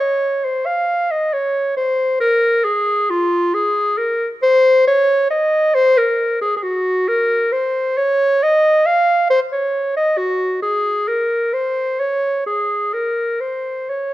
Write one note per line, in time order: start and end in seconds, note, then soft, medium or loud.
0.00 0.46 C#5 medium
0.45 0.68 C5 medium
0.66 1.13 F5 medium
1.11 1.35 D#5 medium
1.33 1.76 C#5 medium
1.77 2.20 C5 medium
2.20 2.66 A#4 loud
2.64 3.11 G#4 medium
3.10 3.56 F4 loud
3.54 3.99 G#4 medium
3.98 4.29 A#4 medium
4.43 4.87 C5 loud
4.88 5.30 C#5 loud
5.30 5.76 D#5 medium
5.74 5.99 C5 loud
5.97 6.41 A#4 medium
6.41 6.56 G#4 medium
6.56 6.64 G#4 medium
6.63 7.10 F#4 medium
7.08 7.54 A#4 loud
7.52 7.99 C5 medium
7.97 8.44 C#5 loud
8.43 8.88 D#5 loud
8.86 9.29 F5 loud
9.30 9.40 C5 loud
9.52 9.96 C#5 medium
9.96 10.19 D#5 medium
10.17 10.61 F#4 medium
10.62 11.10 G#4 medium
11.08 11.55 A#4 medium
11.53 12.01 C5 medium
12.00 12.46 C#5 medium
12.46 12.95 G#4 medium
12.93 13.42 A#4 medium
13.41 13.91 C5 medium
13.89 14.14 C#5 medium